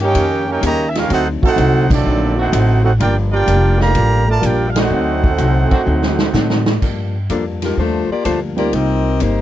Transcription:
Already playing: upright bass G2
0.00 trombone section D#3 A#3 C#4 G4, trumpet section C#5
0.04 trumpet section D#4 A#4 G5
0.14 upright bass F2, hollow-body jazz guitar D#3 A#3 C#4 G4, kick, ride
0.47 trombone section A#3 C#4 G4, trumpet section D#4 A#4 C#5 G5
0.61 upright bass D#2, trombone section C#3 G3 A#3, hollow-body jazz guitar D#3 A#3 C#4 G4, kick, hi-hat pedal, ride
0.65 trumpet section G4 C#5 D#5 A#5
0.89 trumpet section E5
0.95 trumpet section C#4 G4 A#4 F5, trombone section F4, snare, ride
1.08 upright bass D2, hollow-body jazz guitar D3 F#3 C4 D#4, trombone section A3 C4 F#4, kick, ride
1.13 trumpet section D#4 A4 C5 F#5
1.43 trombone section A3 C4 F#4, trumpet section D#4 A4 C5 F#5, muted upright bass stroke, kick
1.56 upright bass C2, hollow-body jazz guitar D3 F#3 C4 D#4, kick, hi-hat pedal, ride
1.90 trombone section F#3 A3 D4, trumpet section C4 F#4 A4 D5, kick, crash
2.04 upright bass A#1, hollow-body jazz guitar D3 F#3 C4 D#4
2.36 trombone section D#3 A3 C4 D4 F#4, trumpet section D#4 A4 C5 F#5
2.52 upright bass A1, hollow-body jazz guitar D3 F#3 C4 D#4, kick, hi-hat pedal, ride
2.84 trombone section A3 C4 F#4, trumpet section D#4 A4 C5 F#5
2.98 upright bass G1, hollow-body jazz guitar G2 F3 A#3 D4, trombone section A#3 D4 G4, trumpet section F4 A#4 D5 G5, kick, ride
3.32 trombone section A#3 D4 G4, trumpet section F4 A#4 D5 G5
3.47 upright bass F1, hollow-body jazz guitar G2 F3 A#3 D4, kick, hi-hat pedal, ride
3.80 trombone section D3 F3 A#3, trumpet section G4 D5 F5 A#5, snare
3.95 upright bass A1, hollow-body jazz guitar G2 F3 A#3 D4, kick, ride
4.27 trombone section A3, trumpet section F4 A#4 D5 A5
4.41 upright bass A#1, hollow-body jazz guitar G2 F3 A#3 D4, trombone section A#3 D4 G4, trumpet section G5, kick, hi-hat pedal, ride
4.45 trumpet section F4 A#4 D5
4.69 trumpet section F5
4.75 trombone section A3 C4 D#4 F#4 D5, trumpet section D#4 A4 F#5, snare, ride
4.79 trumpet section C5
4.90 upright bass D2, hollow-body jazz guitar D3 F#3 C4 D#4
5.24 kick
5.38 upright bass C2, hollow-body jazz guitar D3 F#3 C4 D#4, kick, hi-hat pedal, ride
5.70 trombone section D#3 C4 D4 F#4, kick, ride
5.86 upright bass D2, hollow-body jazz guitar D3 F#3 C4 D#4
6.02 snare
6.19 snare
6.33 upright bass A2, hollow-body jazz guitar D3 F#3 C4 D#4, snare, hi-hat pedal
6.50 snare
6.66 snare
6.81 hollow-body jazz guitar G2 F3 A#3 D4, upright bass G2, kick, crash
7.29 upright bass F2, hollow-body jazz guitar G2 F3 A#3 D4, saxophone section F3 A#3 D4 A4, kick, hi-hat pedal, ride
7.62 saxophone section G3 D4 F4 A#4, snare, ride
7.77 upright bass D#2, hollow-body jazz guitar G2 F3 A#3 D4, saxophone section A3 D4 F4 C5, kick
8.09 saxophone section A#3 F4 G4 D5, muted upright bass stroke
8.25 upright bass D2, hollow-body jazz guitar G2 F3 A#3 D4, saxophone section A3 D4 F4 C5, kick, hi-hat pedal, ride
8.56 grand piano G3 C4 D#4 F4 A#4, saxophone section A#3 F4 G4 D5, ride
8.73 upright bass C2, hollow-body jazz guitar C3 G3 A#3 D#4, saxophone section C4 G4 A#4 D#5, kick, ride
9.20 upright bass G1, hollow-body jazz guitar C3 G3 A#3 D#4, saxophone section A#3 D#4 G4 C5, kick, hi-hat pedal, ride

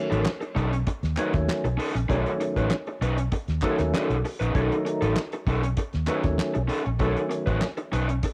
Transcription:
Already playing: tonewheel organ D#3 F#3 A3 C#4
0.10 fingered electric bass A1, overdriven electric guitar C#4 D#4 A4, closed hi-hat
0.25 snare, clap
0.41 muted overdriven electric guitar stroke, closed hi-hat
0.55 fingered electric bass B1, overdriven electric guitar C#4 D#4 A4, kick, closed hi-hat
0.72 muted overdriven electric guitar stroke, closed hi-hat
0.86 muted fingered electric bass stroke, muted overdriven electric guitar stroke, kick, closed hi-hat
1.03 fingered electric bass D#2, snare, closed hi-hat
1.17 tonewheel organ D#3 F#3 A3 C#4, overdriven electric guitar C#4 D#4 B4, clap, closed hi-hat
1.33 fingered electric bass D#2, muted overdriven electric guitar stroke, kick, snare, closed hi-hat
1.48 muted fingered electric bass stroke, snare, clap
1.64 fingered electric bass B1, muted overdriven electric guitar stroke, closed hi-hat
1.77 overdriven electric guitar C#4 D#4 A4, open hi-hat
1.95 fingered electric bass A#1, muted overdriven electric guitar stroke, closed hi-hat
2.09 fingered electric bass B1, tonewheel organ D#3 F#3 A3 C#4, overdriven electric guitar C#4 D#4 A4, kick, closed hi-hat
2.26 closed hi-hat
2.40 muted overdriven electric guitar stroke, closed hi-hat
2.56 fingered electric bass A1, overdriven electric guitar C#4 D#4 B4, kick, closed hi-hat
2.71 snare, clap
2.86 muted overdriven electric guitar stroke, closed hi-hat
3.01 fingered electric bass B1, overdriven electric guitar C#4 D#4 B4, closed hi-hat
3.17 muted overdriven electric guitar stroke, closed hi-hat
3.32 muted overdriven electric guitar stroke, kick, closed hi-hat
3.48 fingered electric bass D#2, snare, closed hi-hat
3.62 tonewheel organ D#3 F#3 A3 B3, overdriven electric guitar C#4 D#4 A4, kick, clap, closed hi-hat
3.71 tonewheel organ C#4
3.78 fingered electric bass D#2, muted overdriven electric guitar stroke, snare, closed hi-hat
3.94 overdriven electric guitar C#4 D#4 A4, snare, clap
4.10 fingered electric bass B1, closed hi-hat
4.25 muted overdriven electric guitar stroke, open hi-hat
4.40 fingered electric bass A#1, overdriven electric guitar C#4 D#4 B4, closed hi-hat
4.54 fingered electric bass B1, tonewheel organ D#3 F#3 A3 C#4, overdriven electric guitar C#4 D#4 A4, kick, closed hi-hat
4.62 tonewheel organ D#4
4.72 closed hi-hat
4.85 muted overdriven electric guitar stroke, closed hi-hat
5.01 fingered electric bass A1, overdriven electric guitar C#4 D#4 A4, closed hi-hat
5.16 snare, clap
5.32 muted overdriven electric guitar stroke, closed hi-hat
5.47 fingered electric bass B1, overdriven electric guitar C#4 D#4 A4, kick, closed hi-hat
5.63 muted overdriven electric guitar stroke, closed hi-hat
5.77 muted fingered electric bass stroke, muted overdriven electric guitar stroke, kick, closed hi-hat
5.93 fingered electric bass D#2, snare, closed hi-hat
6.07 tonewheel organ D#3 F#3 A3 B3, overdriven electric guitar C#4 D#4 B4, clap, closed hi-hat
6.16 tonewheel organ C#4
6.23 fingered electric bass D#2, muted overdriven electric guitar stroke, kick, snare, closed hi-hat
6.38 muted fingered electric bass stroke, snare, clap
6.54 fingered electric bass B1, muted overdriven electric guitar stroke, closed hi-hat
6.68 overdriven electric guitar C#4 D#4 A4, open hi-hat
6.85 fingered electric bass A#1, muted overdriven electric guitar stroke, closed hi-hat
6.99 fingered electric bass B1, tonewheel organ D#3 F#3 A3 B3, overdriven electric guitar C#4 D#4 A4, kick, closed hi-hat
7.08 tonewheel organ C#4
7.17 closed hi-hat
7.30 muted overdriven electric guitar stroke, closed hi-hat
7.46 fingered electric bass A1, overdriven electric guitar C#4 D#4 B4, kick, closed hi-hat
7.61 snare, clap
7.77 muted overdriven electric guitar stroke, closed hi-hat
7.92 fingered electric bass B1, overdriven electric guitar C#4 D#4 B4, closed hi-hat
8.09 muted overdriven electric guitar stroke, closed hi-hat
8.23 muted fingered electric bass stroke, muted overdriven electric guitar stroke, kick, closed hi-hat

